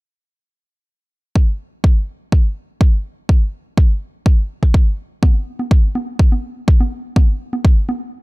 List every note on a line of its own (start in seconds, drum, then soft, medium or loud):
1.36 kick loud
1.84 kick loud
2.32 kick loud
2.81 kick loud
3.29 kick loud
3.77 kick loud
4.26 kick loud
4.63 kick medium
4.74 kick loud
5.23 kick loud
5.23 high conga medium
5.59 high conga medium
5.71 kick loud
5.95 high conga medium
6.19 kick loud
6.32 high conga medium
6.68 kick loud
6.80 high conga medium
7.16 kick loud
7.16 high conga medium
7.53 high conga medium
7.65 kick loud
7.89 high conga medium